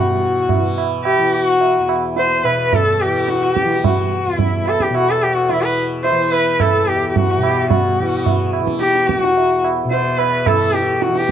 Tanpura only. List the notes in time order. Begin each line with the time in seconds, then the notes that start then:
Already playing: E2 B2 E3
0.56 E3
1.19 E3
1.79 E2
2.44 B2
3.05 E3
3.65 E3
4.26 E2
4.90 B2
5.52 E3
6.12 E3
6.76 E2
7.37 B2
8.00 E3
8.61 E3
9.25 E2
9.85 B2
10.48 E3
11.09 E3